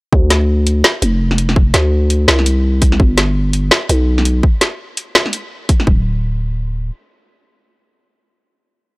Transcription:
0, 0, Header, 1, 3, 480
1, 0, Start_track
1, 0, Tempo, 359281
1, 166, Time_signature, 4, 2, 24, 8
1, 11989, End_track
2, 0, Start_track
2, 0, Title_t, "808-style bass"
2, 0, Program_c, 0, 38
2, 167, Note_on_c, 0, 38, 97
2, 1110, Note_off_c, 0, 38, 0
2, 1364, Note_on_c, 0, 29, 92
2, 2309, Note_off_c, 0, 29, 0
2, 2326, Note_on_c, 0, 38, 97
2, 3030, Note_off_c, 0, 38, 0
2, 3044, Note_on_c, 0, 36, 101
2, 3989, Note_off_c, 0, 36, 0
2, 4003, Note_on_c, 0, 31, 96
2, 4949, Note_off_c, 0, 31, 0
2, 5203, Note_on_c, 0, 35, 100
2, 5908, Note_off_c, 0, 35, 0
2, 7845, Note_on_c, 0, 26, 98
2, 9231, Note_off_c, 0, 26, 0
2, 11989, End_track
3, 0, Start_track
3, 0, Title_t, "Drums"
3, 167, Note_on_c, 9, 36, 116
3, 301, Note_off_c, 9, 36, 0
3, 406, Note_on_c, 9, 38, 63
3, 406, Note_on_c, 9, 42, 86
3, 540, Note_off_c, 9, 38, 0
3, 540, Note_off_c, 9, 42, 0
3, 890, Note_on_c, 9, 42, 65
3, 1023, Note_off_c, 9, 42, 0
3, 1125, Note_on_c, 9, 38, 116
3, 1258, Note_off_c, 9, 38, 0
3, 1365, Note_on_c, 9, 42, 84
3, 1499, Note_off_c, 9, 42, 0
3, 1749, Note_on_c, 9, 40, 55
3, 1846, Note_on_c, 9, 42, 70
3, 1883, Note_off_c, 9, 40, 0
3, 1980, Note_off_c, 9, 42, 0
3, 1989, Note_on_c, 9, 40, 54
3, 2087, Note_on_c, 9, 36, 122
3, 2123, Note_off_c, 9, 40, 0
3, 2221, Note_off_c, 9, 36, 0
3, 2323, Note_on_c, 9, 38, 65
3, 2323, Note_on_c, 9, 42, 83
3, 2457, Note_off_c, 9, 38, 0
3, 2457, Note_off_c, 9, 42, 0
3, 2807, Note_on_c, 9, 42, 67
3, 2941, Note_off_c, 9, 42, 0
3, 3046, Note_on_c, 9, 38, 122
3, 3180, Note_off_c, 9, 38, 0
3, 3189, Note_on_c, 9, 40, 56
3, 3288, Note_on_c, 9, 42, 83
3, 3323, Note_off_c, 9, 40, 0
3, 3422, Note_off_c, 9, 42, 0
3, 3764, Note_on_c, 9, 42, 69
3, 3765, Note_on_c, 9, 36, 112
3, 3897, Note_off_c, 9, 42, 0
3, 3899, Note_off_c, 9, 36, 0
3, 3904, Note_on_c, 9, 40, 55
3, 4004, Note_on_c, 9, 36, 123
3, 4037, Note_off_c, 9, 40, 0
3, 4138, Note_off_c, 9, 36, 0
3, 4242, Note_on_c, 9, 38, 66
3, 4242, Note_on_c, 9, 42, 84
3, 4376, Note_off_c, 9, 38, 0
3, 4376, Note_off_c, 9, 42, 0
3, 4721, Note_on_c, 9, 42, 66
3, 4854, Note_off_c, 9, 42, 0
3, 4960, Note_on_c, 9, 38, 124
3, 5093, Note_off_c, 9, 38, 0
3, 5202, Note_on_c, 9, 42, 82
3, 5336, Note_off_c, 9, 42, 0
3, 5585, Note_on_c, 9, 40, 53
3, 5683, Note_on_c, 9, 42, 68
3, 5718, Note_off_c, 9, 40, 0
3, 5816, Note_off_c, 9, 42, 0
3, 5922, Note_on_c, 9, 36, 119
3, 6056, Note_off_c, 9, 36, 0
3, 6162, Note_on_c, 9, 38, 65
3, 6162, Note_on_c, 9, 42, 81
3, 6296, Note_off_c, 9, 38, 0
3, 6296, Note_off_c, 9, 42, 0
3, 6643, Note_on_c, 9, 42, 63
3, 6776, Note_off_c, 9, 42, 0
3, 6881, Note_on_c, 9, 38, 120
3, 7015, Note_off_c, 9, 38, 0
3, 7023, Note_on_c, 9, 40, 50
3, 7120, Note_on_c, 9, 42, 78
3, 7157, Note_off_c, 9, 40, 0
3, 7253, Note_off_c, 9, 42, 0
3, 7602, Note_on_c, 9, 42, 65
3, 7603, Note_on_c, 9, 36, 113
3, 7736, Note_off_c, 9, 36, 0
3, 7736, Note_off_c, 9, 42, 0
3, 7745, Note_on_c, 9, 40, 50
3, 7843, Note_on_c, 9, 36, 110
3, 7879, Note_off_c, 9, 40, 0
3, 7977, Note_off_c, 9, 36, 0
3, 11989, End_track
0, 0, End_of_file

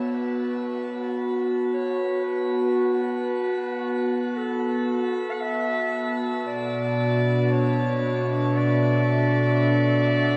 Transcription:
0, 0, Header, 1, 4, 480
1, 0, Start_track
1, 0, Key_signature, 2, "minor"
1, 0, Tempo, 500000
1, 9953, End_track
2, 0, Start_track
2, 0, Title_t, "Glass harmonica"
2, 0, Program_c, 0, 92
2, 0, Note_on_c, 0, 81, 58
2, 9953, Note_off_c, 0, 81, 0
2, 9953, End_track
3, 0, Start_track
3, 0, Title_t, "Clarinet"
3, 0, Program_c, 1, 71
3, 0, Note_on_c, 1, 73, 95
3, 141, Note_on_c, 1, 71, 96
3, 155, Note_off_c, 1, 73, 0
3, 1384, Note_off_c, 1, 71, 0
3, 1663, Note_on_c, 1, 73, 91
3, 2153, Note_on_c, 1, 71, 91
3, 2167, Note_off_c, 1, 73, 0
3, 4195, Note_on_c, 1, 69, 86
3, 4209, Note_off_c, 1, 71, 0
3, 5100, Note_on_c, 1, 78, 63
3, 5115, Note_off_c, 1, 69, 0
3, 5196, Note_on_c, 1, 76, 105
3, 5210, Note_off_c, 1, 78, 0
3, 5932, Note_off_c, 1, 76, 0
3, 6214, Note_on_c, 1, 74, 91
3, 7217, Note_on_c, 1, 73, 89
3, 7232, Note_off_c, 1, 74, 0
3, 8225, Note_on_c, 1, 74, 88
3, 8240, Note_off_c, 1, 73, 0
3, 9953, Note_off_c, 1, 74, 0
3, 9953, End_track
4, 0, Start_track
4, 0, Title_t, "Ambient pad"
4, 0, Program_c, 2, 92
4, 0, Note_on_c, 2, 59, 79
4, 0, Note_on_c, 2, 66, 65
4, 0, Note_on_c, 2, 71, 58
4, 6174, Note_on_c, 2, 47, 77
4, 6562, Note_on_c, 2, 62, 75
4, 7841, Note_on_c, 2, 76, 84
4, 7894, Note_on_c, 2, 69, 75
4, 8552, Note_off_c, 2, 59, 0
4, 8706, Note_off_c, 2, 71, 0
4, 9423, Note_off_c, 2, 66, 0
4, 9443, Note_on_c, 2, 78, 66
4, 9953, Note_off_c, 2, 47, 0
4, 9953, Note_off_c, 2, 62, 0
4, 9953, Note_off_c, 2, 69, 0
4, 9953, Note_off_c, 2, 76, 0
4, 9953, Note_off_c, 2, 78, 0
4, 9953, End_track
0, 0, End_of_file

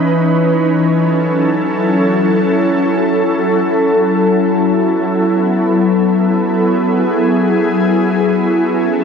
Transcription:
0, 0, Header, 1, 2, 480
1, 0, Start_track
1, 0, Tempo, 500000
1, 8679, End_track
2, 0, Start_track
2, 0, Title_t, "Ambient pad"
2, 0, Program_c, 0, 92
2, 0, Note_on_c, 0, 52, 79
2, 0, Note_on_c, 0, 61, 71
2, 0, Note_on_c, 0, 63, 70
2, 0, Note_on_c, 0, 71, 89
2, 801, Note_off_c, 0, 63, 0
2, 802, Note_off_c, 0, 52, 0
2, 802, Note_off_c, 0, 71, 0
2, 837, Note_on_c, 0, 54, 82
2, 839, Note_on_c, 0, 64, 74
2, 839, Note_on_c, 0, 69, 90
2, 4456, Note_off_c, 0, 61, 0
2, 4497, Note_on_c, 0, 59, 74
2, 6286, Note_off_c, 0, 69, 0
2, 6328, Note_on_c, 0, 68, 88
2, 8114, Note_off_c, 0, 54, 0
2, 8117, Note_off_c, 0, 59, 0
2, 8136, Note_off_c, 0, 68, 0
2, 8154, Note_on_c, 0, 54, 78
2, 8155, Note_on_c, 0, 61, 76
2, 8156, Note_on_c, 0, 69, 94
2, 8679, Note_off_c, 0, 54, 0
2, 8679, Note_off_c, 0, 61, 0
2, 8679, Note_off_c, 0, 64, 0
2, 8679, Note_off_c, 0, 69, 0
2, 8679, End_track
0, 0, End_of_file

